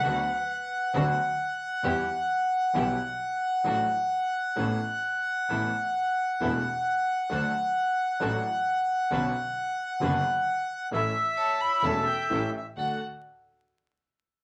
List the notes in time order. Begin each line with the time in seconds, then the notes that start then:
Already playing: B4 F#5
0.03 D2 D3 F#3 B3 D4 F#4
0.94 D2 D3 F#3 B3 D4 F#4
1.83 E2 E3 G3 B3 E4 G4
2.74 B1 B2 E3 G3 B3 E4 G4
3.64 A1 A2 F#3 A3 D4 F#4 A4
4.56 A1 A2 E3 B3 C#4 A4
5.49 A1 A2 E3 A3 B3 E4 A4
6.40 E1 E2 E3 A3 B3 E4 A4
7.30 D2 D3 F#3 A3 D4 F#4 A4
8.20 A1 A2 F#3 A3 D4 F#4 A4
9.11 B1 B2 D3 B3 C#4 D4 F#4 B4
10.01 F#1 F#2 D3 B3 C#4 D4 F#4 B4
10.91 A1 A2 E3 A3 C#4 E4 A4 E5
11.37 C#5 A5
11.60 B5
11.83 E1 E2 E3 A3 C#4 E4 A4 A5
12.07 G5
12.29 A1 A2 E3 A3 C#4 G4 A4
12.57 E5
12.76 D2 A3 D4 F#4 A4 F#5